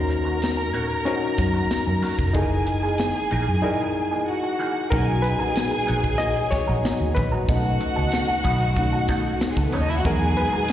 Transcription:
Already playing: D#2 C#4 D#4 F#4 A#4 A#5
0.09 muted clean electric guitar stroke, closed hi-hat
0.25 A#3 C#4 F#4 A#4
0.42 snare, closed hi-hat
0.57 muted clean electric guitar stroke
0.73 A#2 A#3 C#4 F#4 C#5, closed hi-hat
0.89 muted clean electric guitar stroke
1.05 A#3 C#4 D#4 F#4 A#4, closed hi-hat
1.38 F#2, muted clean electric guitar stroke, kick, snare, closed hi-hat
1.54 A#3 C#4 F#4 A#4
1.71 muted fingered electric bass stroke, snare, closed hi-hat
1.87 F#2, muted clean electric guitar stroke
2.02 A#3 C#4 F#4 A#4, open hi-hat
2.18 F1, muted clean electric guitar stroke, kick
2.33 F#1 E3 A#3 D#4 E4 G#4 A4 G#5, kick, closed hi-hat
2.42 A#4
2.50 muted clean electric guitar stroke
2.67 muted clean electric guitar stroke, closed hi-hat
2.83 E3 A#3 D#4 G#4
2.98 snare, closed hi-hat
3.15 muted clean electric guitar stroke
3.31 A#1 E3 A#3 D#4 A#4, closed hi-hat
3.47 F#2, muted clean electric guitar stroke
3.62 E3 A#3 D#4 E4 G#4 A#4
3.95 muted clean electric guitar stroke
4.11 E3 A#3 D#4 G#4
4.28 F#4 F#5
4.43 muted clean electric guitar stroke
4.59 E3 A#3 D#4 G#4
4.76 muted clean electric guitar stroke
4.90 B1 A#2 D#3 F#3 A#3 C#4 D#4 F#4 G#4 A#4 G#5, kick, closed hi-hat
5.07 muted clean electric guitar stroke
5.22 B4, muted clean electric guitar stroke, closed hi-hat
5.39 A#3 D#4 F#4 A#4, muted fingered electric bass stroke
5.56 snare, closed hi-hat
5.71 muted clean electric guitar stroke
5.87 A#1 A#3 D#4 F#4 C#5, closed hi-hat
6.03 muted clean electric guitar stroke, kick
6.18 A#3 D#4 F#4 A#4 D#5, closed hi-hat
6.51 C#5, muted clean electric guitar stroke, muted fingered electric bass stroke, kick, snare, closed hi-hat
6.67 A#1 A#3 D#4 F#4 A#4
6.83 A#3 D#4 F#4 A#4, snare, closed hi-hat
7.00 D#2
7.15 A#1 B4, muted clean electric guitar stroke, kick, closed hi-hat
7.32 A#3 D#4 F#4 A#4
7.48 B1 F#3 A3 B3 C#4 D#4 F#4 A4 F#5, kick, closed hi-hat
7.64 muted clean electric guitar stroke
7.80 muted clean electric guitar stroke, closed hi-hat
7.96 C#2 F#3 B3 D#4 A4
8.12 snare, closed hi-hat
8.28 muted clean electric guitar stroke, muted fingered electric bass stroke
8.44 B1 F#3 B3 D#4 B4, kick, closed hi-hat
8.61 muted clean electric guitar stroke
8.76 A3 C#4 D#4, kick, closed hi-hat
8.93 muted clean electric guitar stroke
9.08 F#3 B3 D#4 A4, kick, snare, closed hi-hat
9.25 muted clean electric guitar stroke
9.41 snare, closed hi-hat
9.49 G#3 G#4
9.57 C#2 A3 A4, muted clean electric guitar stroke, kick
9.65 B3 B4
9.72 D#2 F#3 B3 C#4 D#4 A4 C#5, closed hi-hat
9.82 D#4 D#5
9.89 E4 E5, muted clean electric guitar stroke
9.97 F#4 F#5
10.05 E2 A#2 F#3 G#3 D#4 F#4 G#4 A#4 G#5, kick, closed hi-hat
10.21 muted clean electric guitar stroke
10.37 B4, muted clean electric guitar stroke, closed hi-hat
10.53 G#3 D#4 F#4 A#4, muted fingered electric bass stroke
10.68 closed hi-hat

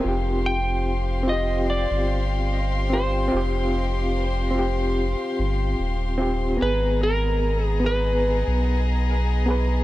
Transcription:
0.00 C4 F4 G4 C5 F5 C6
0.04 F1 G4
0.46 G5
1.23 C4
1.28 F4 D#5
1.32 G4
1.70 D5
1.91 G1
2.90 C4 F4 C5
2.95 G4
3.28 C4
3.32 F1 F4
3.37 G4
4.48 C4 A#4
4.55 F4
4.59 G4
5.39 G1
5.79 D#1
6.18 C4 F4
6.22 G4
6.57 B3
6.61 G#1 B3 G#4 B4 D#5 A#5
7.03 A#4
7.64 G#4
7.80 B3
7.84 G#4 B4
7.89 B4
8.47 B1
9.46 B3 G#4
9.50 B4

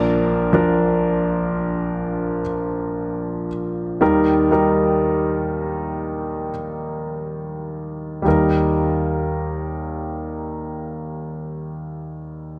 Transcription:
Already playing: A#1 A#2 F3 D4 A#4
0.53 F3 D4 A#4
4.01 D#2 D#3 G3 D#4 A#4
4.51 G3 D#4 A#4
8.22 D#2 G3 D#4
8.28 A#4

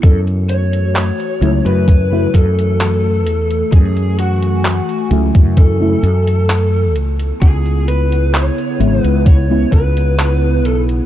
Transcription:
0.03 F#2 E3 A3 F#4 A4, kick, closed hi-hat
0.27 closed hi-hat
0.49 C#5, closed hi-hat
0.73 closed hi-hat
0.95 C#5, clap, closed hi-hat
1.20 closed hi-hat
1.41 C#2 C#3 F#3 A3 E4, closed hi-hat
1.65 F#2 B4, closed hi-hat
1.88 kick, closed hi-hat
2.11 C#3 F#3 A3 E4
2.34 F#2 A4, kick, closed hi-hat
2.59 closed hi-hat
2.81 clap, closed hi-hat
3.26 E2, closed hi-hat
3.51 closed hi-hat
3.72 F#2 G#4 G#5, kick, closed hi-hat
3.97 closed hi-hat
4.19 F#4, closed hi-hat
4.43 closed hi-hat
4.65 clap, closed hi-hat
4.89 closed hi-hat
5.10 C#2 C#3 F#3 A3 E4, closed hi-hat
5.35 F#2, kick, closed hi-hat
5.57 A4, kick, closed hi-hat
5.80 C#3 F#3 A3 E4
6.03 F#2, closed hi-hat
6.27 closed hi-hat
6.50 clap, closed hi-hat
6.95 C#2 C#3 B3 E4, closed hi-hat
7.20 closed hi-hat
7.42 C#2 G#4, kick, closed hi-hat
7.66 closed hi-hat
7.88 B4, closed hi-hat
8.12 closed hi-hat
8.34 C#5, clap, closed hi-hat
8.58 closed hi-hat
8.79 G#1 C#3 G#3 B3 E4, closed hi-hat
9.02 C#2 B4, closed hi-hat
9.26 C#5, kick, closed hi-hat
9.50 C#3 G#3 B3 E4
9.72 C#2 B4, kick, closed hi-hat
9.97 closed hi-hat
10.19 clap, closed hi-hat
10.64 B1 A4, closed hi-hat
10.89 closed hi-hat

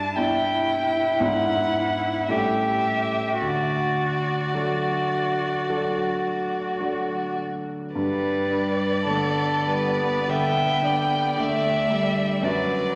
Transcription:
Already playing: G2 D4 A5
0.16 B3 D4 E4 G5
1.20 G#2 B3 D4 E4 F#5
2.27 A2 G3 C#4 G4 A4 E5
3.40 D2 F#4 D5
4.54 F#3 D4 A4
5.69 F#3 D4 A4
6.80 F#3 D4 A4
7.95 G2 G3 B4 D5
8.50 D4
9.05 D3 A4
9.09 B3
9.66 G3 B4
10.28 D3 E5 G5
10.83 D4 D5
11.37 D3 A3 E5
11.90 G3
12.42 F#2 F#3 B4 D5

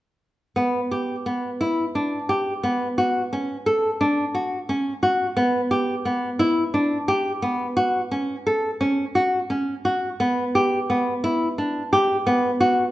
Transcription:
0.56 B3
0.91 G4
1.26 B3
1.61 E4
1.95 D4
2.29 G4
2.63 B3
2.98 F#4
3.33 C#4
3.66 A4
4.01 D4
4.35 F#4
4.69 C#4
5.03 F#4
5.37 B3
5.71 G4
6.05 B3
6.39 E4
6.74 D4
7.08 G4
7.42 B3
7.77 F#4
8.11 C#4
8.47 A4
8.81 C#4
9.15 F#4
9.50 C#4
9.85 F#4
10.20 B3
10.55 G4
10.90 B3
11.24 E4
11.58 D4
11.93 G4
12.27 B3
12.60 F#4

